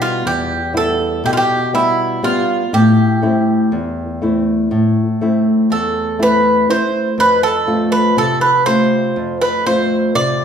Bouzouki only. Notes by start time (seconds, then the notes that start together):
0.02 F4
0.27 G4
0.77 A4
1.26 G4
1.33 F4
1.37 G4
1.75 E4
2.24 F4
2.74 G4
5.72 A4
6.23 B4
6.70 C5
7.20 B4
7.43 A4
7.92 B4
8.18 A4
8.41 B4
8.66 C5
9.41 B4
9.66 C5
10.15 D5